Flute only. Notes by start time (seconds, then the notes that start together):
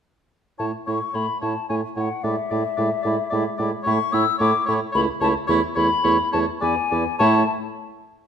0.59 A5
0.86 C#6
1.15 B5
1.42 A5
1.69 G#5
1.97 F#5
2.24 E5
3.86 C#6
4.13 E6
4.40 D6
4.68 C#6
4.95 B5
5.22 A5
5.48 C#6
5.75 B5
6.33 A5
6.61 G#5
7.19 A5